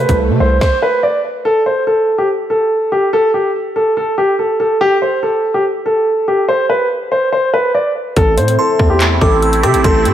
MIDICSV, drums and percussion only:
0, 0, Header, 1, 2, 480
1, 0, Start_track
1, 0, Key_signature, 0, "minor"
1, 0, Tempo, 419580
1, 1661, Time_signature, 4, 2, 24, 8
1, 11596, End_track
2, 0, Start_track
2, 0, Title_t, "Drums"
2, 101, Note_on_c, 9, 36, 87
2, 101, Note_on_c, 9, 42, 73
2, 216, Note_off_c, 9, 36, 0
2, 216, Note_off_c, 9, 42, 0
2, 702, Note_on_c, 9, 36, 114
2, 702, Note_on_c, 9, 38, 94
2, 816, Note_off_c, 9, 36, 0
2, 816, Note_off_c, 9, 38, 0
2, 9341, Note_on_c, 9, 36, 117
2, 9341, Note_on_c, 9, 42, 80
2, 9455, Note_off_c, 9, 42, 0
2, 9456, Note_off_c, 9, 36, 0
2, 9582, Note_on_c, 9, 42, 77
2, 9696, Note_off_c, 9, 42, 0
2, 9702, Note_on_c, 9, 42, 78
2, 9816, Note_off_c, 9, 42, 0
2, 10061, Note_on_c, 9, 36, 96
2, 10062, Note_on_c, 9, 37, 91
2, 10175, Note_off_c, 9, 36, 0
2, 10176, Note_off_c, 9, 37, 0
2, 10301, Note_on_c, 9, 42, 76
2, 10302, Note_on_c, 9, 39, 119
2, 10416, Note_off_c, 9, 39, 0
2, 10416, Note_off_c, 9, 42, 0
2, 10541, Note_on_c, 9, 36, 104
2, 10655, Note_off_c, 9, 36, 0
2, 10782, Note_on_c, 9, 42, 54
2, 10896, Note_off_c, 9, 42, 0
2, 10901, Note_on_c, 9, 42, 91
2, 11016, Note_off_c, 9, 42, 0
2, 11022, Note_on_c, 9, 37, 102
2, 11022, Note_on_c, 9, 42, 88
2, 11136, Note_off_c, 9, 37, 0
2, 11136, Note_off_c, 9, 42, 0
2, 11142, Note_on_c, 9, 42, 90
2, 11256, Note_off_c, 9, 42, 0
2, 11261, Note_on_c, 9, 42, 83
2, 11262, Note_on_c, 9, 36, 122
2, 11375, Note_off_c, 9, 42, 0
2, 11376, Note_off_c, 9, 36, 0
2, 11502, Note_on_c, 9, 42, 75
2, 11596, Note_off_c, 9, 42, 0
2, 11596, End_track
0, 0, End_of_file